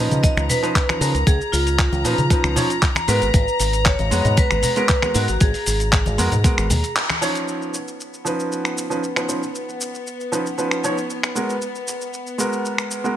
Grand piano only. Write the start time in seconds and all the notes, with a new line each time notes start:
Already playing: F3 C#4 D#4
0.00 B4
0.63 F3 C#4 D#4 B4
0.89 F3 C#4 D#4 B4
1.01 F3 C#4 D#4 B4
2.05 F3 C#4 D#4 B4
2.30 F3 C#4 D#4 B4
2.56 F3 C#4 D#4 C#5
3.08 G#3 B3 F#4 A#4
4.11 G#3 B3 F#4 B4
4.76 G#3 B3 F#4 A#4
5.02 G#3 B3 F#4 A#4
5.14 G#3 B3 F#4 A#4
6.18 G#3 B3 F#4 A#4
6.44 G#3 B3 F#4 A#4
7.21 F3 C#4 D#4 C#5
8.25 F3 C#4 D#4 B4
8.90 F3 C#4 D#4 B4
9.16 F3 C#4 D#4 B4
9.28 F3 C#4 D#4 B4
10.32 F3 C#4 D#4 B4
10.58 F3 C#4 D#4 B4
10.84 F3 C#4 D#4 C#5
11.35 G#3 B3 F#4 A#4
12.38 G#3 B3 F#4 A#4
13.04 G#3 B3 F#4 A#4